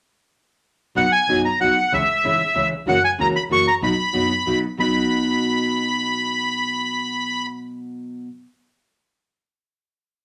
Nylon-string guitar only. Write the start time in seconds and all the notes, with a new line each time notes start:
0.95 B2 F#3 B3 D#4 F#4
1.28 B2 F#3 B3 D#4 F#4
1.60 B2 F#3 B3 D#4 F#4
1.92 C#3 E3 G#3 C#4 E4
2.24 C#3 E3 G#3 C#4 E4
2.55 C#3 E3 G#3 C#4 E4
2.87 C#3 E3 A#3 C#4 F#4
3.18 C#3 E3 A#3 C#4 F#4
3.50 C#3 E3 A#3 C#4 F#4
3.81 B2 F#3 B3 D#4 F#4
4.13 B2 F#3 B3 D#4 F#4
4.46 B2 F#3 B3 D#4 F#4
4.77 B2 F#3 B3 D#4 F#4